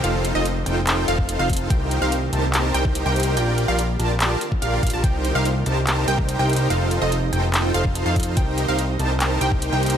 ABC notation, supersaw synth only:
X:1
M:4/4
L:1/16
Q:1/4=144
K:Cdor
V:1 name="Supersaw synth"
[EFAcf]3 [EFAce] z2 [EFAcg]4 [EFAcf]3 [EFAcf]3 | [EGBcg]3 [EGBcf] z2 [EGBca]4 [EGBcg]3 [EGBcg]3 | [FGBdg]3 [FGBdf] z2 [FGBda]4 z2 [FGBdf]2 [FGBdf] [FGBda] | [EGB]3 [EGBcf] z2 [EGBca]4 [EGBcg]3 [EGBcg]3 |
[EFAcf]3 [EFAce] z2 [EFAcg]4 [EFAcf]3 [EFAcf]3 | [EGBg]3 [EGBcf] z2 [EGBca]4 [EGBcg]3 [EGBcg]3 |]